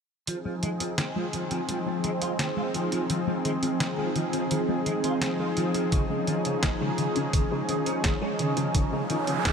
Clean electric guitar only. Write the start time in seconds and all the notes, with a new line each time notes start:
0.28 F3
0.45 F3
0.63 G#3
0.81 F3
0.98 C4
1.16 F3
1.33 F3
1.51 F3
1.69 F3
1.87 F3
2.04 G#3
2.22 F4
2.40 C4
2.57 F4
2.75 F3
2.93 F3
3.10 F3
3.28 F3
3.45 G#3
3.63 F3
3.81 C4
3.98 F3
4.16 F3
4.33 F3
4.51 F3
4.69 F3
4.87 G#3
5.04 F4
5.22 C4
5.40 F4
5.57 F3
5.75 F3
5.93 C#3
6.10 C#3
6.28 F3
6.46 C#3
6.63 G#3
6.81 C#3
6.98 C#3
7.16 C#3
7.34 C#3
7.51 C#3
7.69 F3
7.86 C#4
8.04 G#3
8.22 C#4
8.40 C#3
8.57 C#3
8.75 C#3
8.93 C#3
9.10 F3
9.28 C#3
9.45 G#3